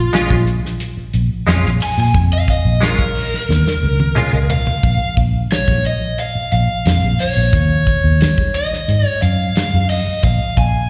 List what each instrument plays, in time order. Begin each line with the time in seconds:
Already playing: overdriven electric guitar F4
0.13 clean electric guitar G#3 C#4 F4, snare, closed hi-hat
0.30 fingered electric bass A#1, kick
0.47 closed hi-hat
0.65 snare
0.80 closed hi-hat
0.97 muted fingered electric bass stroke
1.13 fingered electric bass A#1, closed hi-hat
1.47 fingered electric bass F2, clean electric guitar G#3 C#4 F4, snare, closed hi-hat
1.64 fingered electric bass A#1, snare
1.80 overdriven electric guitar G#5, open hi-hat
1.98 fingered electric bass A#2, overdriven electric guitar G#5
2.14 fingered electric bass F2, kick, closed hi-hat
2.33 overdriven electric guitar F5
2.48 overdriven electric guitar D#5, kick, closed hi-hat
2.65 fingered electric bass A#1
2.81 clean electric guitar G#3 C#4 F4, overdriven electric guitar A#4, snare, closed hi-hat
2.99 kick
3.15 open hi-hat
3.34 snare
3.49 fingered electric bass D#2, snare
3.68 snare
3.83 fingered electric bass C#2
4.00 high tom
4.15 clean electric guitar G#3 C#4 F4, mid tom
4.33 fingered electric bass C#2
4.50 overdriven electric guitar F5, floor tom
4.67 muted fingered electric bass stroke, floor tom
4.83 fingered electric bass A#1, kick, closed hi-hat
5.17 fingered electric bass A#1, kick, closed hi-hat
5.51 overdriven electric guitar C#5, snare, closed hi-hat
5.68 fingered electric bass A#1, kick
5.85 overdriven electric guitar D#5, closed hi-hat
6.18 overdriven electric guitar F5, closed hi-hat
6.35 muted fingered electric bass stroke
6.52 fingered electric bass A#1, overdriven electric guitar F5, closed hi-hat
6.86 fingered electric bass F2, snare, closed hi-hat
7.03 fingered electric bass A#1
7.19 overdriven electric guitar C#5, open hi-hat
7.37 fingered electric bass A#1
7.53 fingered electric bass D#2, kick, closed hi-hat
7.87 kick, closed hi-hat
8.04 fingered electric bass D#2
8.21 snare, closed hi-hat
8.38 kick
8.55 overdriven electric guitar D#5, closed hi-hat
8.73 snare
8.88 fingered electric bass G#2, closed hi-hat
9.07 overdriven electric guitar C#5
9.22 fingered electric bass F#2, overdriven electric guitar F5, closed hi-hat
9.56 snare, closed hi-hat
9.73 fingered electric bass F#2
9.90 overdriven electric guitar D#5, open hi-hat
10.07 muted fingered electric bass stroke
10.23 fingered electric bass A#1, overdriven electric guitar F5, kick, closed hi-hat
10.57 fingered electric bass A#1, overdriven electric guitar G#5, kick, closed hi-hat